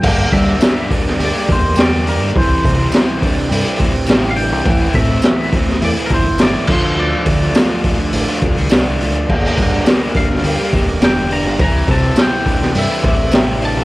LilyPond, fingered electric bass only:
\new Staff \with { instrumentName = "Fingered electric bass" } { \clef bass \time 4/4 \key g \dorian \tempo 4 = 104 g,8 g8 r4 d,16 r16 e,4~ e,16 g,16 | c,8 c8 r4 g,16 r16 a,,4~ a,,16 c,16 | a,,8 a,8 r4 e,16 r16 g,,4 d,8~ | d,8 d8 r4 a,,16 r16 c,4~ c,16 d,16 |
g,,8 g,8 r4 d,16 r16 e,,4~ e,,16 g,,16 | c,8 c8 r4 g,16 r16 a,,4~ a,,16 bes,,16 | }